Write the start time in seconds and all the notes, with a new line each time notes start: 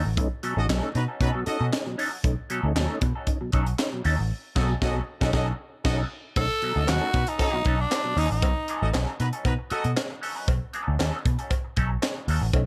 0.05 A1, muted clean electric guitar stroke
0.17 B1 A3 C#4 D#4, kick, closed hi-hat
0.43 B2 F#3 C#4 D#4 A4, closed hi-hat
0.57 A1 A3 C#4 D#4 F#4 A4 D#5
0.69 B1 B2 F#3 C#4 D#4 A4, snare, clap, closed hi-hat
0.82 A3 C#4 D#4
0.95 B2 C#4 D#4 F#4 B4, muted clean electric guitar stroke, closed hi-hat
1.08 F#3 C#4 D#4 A4
1.20 B2 F#3 C#4 D#4 F#4 A4 B4, kick, closed hi-hat
1.34 B2 F#3
1.46 C#4 D#4 F#4 A4 D#5, muted clean electric guitar stroke, muted picked electric bass stroke, closed hi-hat
1.59 B2 F#3 C#4 D#4 A4
1.72 C#4 D#4, snare, clap, closed hi-hat
1.86 B2 F#3, muted clean electric guitar stroke
1.98 F#3 C#4 D#4 A4, open hi-hat
2.11 muted clean electric guitar stroke
2.24 B1 A3 C#4 D#4, kick, closed hi-hat
2.50 B2 F#3 C#4 D#4 A4, closed hi-hat
2.63 D2 A3 C#4 D#4
2.76 D#2 B2 F#3 C#4 D#4 A4, snare, clap, closed hi-hat
2.89 A3 C#4 D#4
3.01 B2 C#4 D#4, muted clean electric guitar stroke, kick, closed hi-hat
3.15 F#3 C#4 D#4 A4
3.27 C#4 D#4, kick, closed hi-hat
3.41 B2 F#3, muted clean electric guitar stroke
3.52 B1 F#3 C#4 D#4 A4, kick, closed hi-hat
3.66 muted clean electric guitar stroke, closed hi-hat
3.79 C#4 D#4, muted clean electric guitar stroke, snare, clap, closed hi-hat
3.92 B2 F#3, muted clean electric guitar stroke
4.04 D#2 F#3 C#4 D#4 A4, open hi-hat
4.19 A1, muted clean electric guitar stroke
4.56 B1 B2 F#3 C#4 D#4 F#4 A4 D#5, kick, snare, crash
4.82 B1 B2 F#3 C#4 D#4 F#4 A4 D#5, kick, snare
5.20 B1 F#3 C#4 D#4 F#4 A4 D#5, kick, snare
5.32 B1 F#3 C#4 D#4 F#4 A4 D#5, kick, snare
5.84 B1 F#3 C#4 D#4 F#4 A4 D#5, kick, snare, crash
6.36 B1 A3 C#4 D#4 A4, kick, crash, cowbell
6.62 B2 F#3 C#4 D#4 A4, closed hi-hat
6.76 D2 A3 C#4 D#4 F#4 A4 D#5
6.87 D#2 B2 F#3 C#4 D#4 F#4 A4, snare, clap, closed hi-hat, cowbell
7.01 A3 C#4 D#4
7.13 B2 C#4 D#4 F#4 B4, muted clean electric guitar stroke, kick, closed hi-hat
7.27 F#3 C#4 D#4 A4, closed hi-hat
7.39 C#4 D#4 F#4 A4, kick, closed hi-hat, cowbell
7.53 B2 F#3, muted clean electric guitar stroke
7.65 B1 F#3 C#4 D#4 A4, kick, closed hi-hat
7.80 D4, muted clean electric guitar stroke
7.90 C#4 D#4, snare, clap, closed hi-hat, cowbell
8.04 B2 F#3, muted clean electric guitar stroke
8.16 D#2 F#3 C#4 D#4 A4, open hi-hat
8.31 A1 D#4, muted clean electric guitar stroke
8.42 B1, kick, closed hi-hat, cowbell
8.68 F#3 C#4 D#4 A4, closed hi-hat
8.82 A1 F#4 A4 D#5
8.93 B1 F#3 C#4 D#4 A4, snare, clap, closed hi-hat, cowbell
9.19 B2 D#4 F#4 B4, muted clean electric guitar stroke, closed hi-hat
9.33 F#3 C#4 D#4 A4, closed hi-hat
9.45 B2 D#4 F#4 B4, muted clean electric guitar stroke, kick, closed hi-hat, cowbell
9.59 muted clean electric guitar stroke
9.70 F#3 C#4 D#4 F#4 A4 D#5, muted picked electric bass stroke, closed hi-hat
9.84 B2, muted clean electric guitar stroke, closed hi-hat
9.97 muted clean electric guitar stroke, snare, clap, closed hi-hat, cowbell
10.10 muted clean electric guitar stroke
10.21 F#3 C#4 D#4 A4, open hi-hat
10.35 F#3 C#4 D#4 B4
10.48 B1, kick, closed hi-hat, cowbell
10.73 F#3 C#4 D#4 A4, closed hi-hat
10.88 D2
10.99 D#2 F#3 C#4 D#4 A4, snare, clap, closed hi-hat, cowbell
11.25 B2, muted clean electric guitar stroke, kick, closed hi-hat
11.39 F#3 C#4 D#4 A4, closed hi-hat
11.50 kick, closed hi-hat, cowbell
11.65 muted clean electric guitar stroke
11.77 B1 F#3 C#4 D#4 A4, kick, closed hi-hat
11.91 muted clean electric guitar stroke
12.02 muted clean electric guitar stroke, snare, clap, closed hi-hat, cowbell
12.16 muted clean electric guitar stroke
12.28 D#2 F#3 C#4 D#4 A4, open hi-hat
12.41 A1, muted clean electric guitar stroke
12.53 B1 A3 C#4 D#4, kick, closed hi-hat, cowbell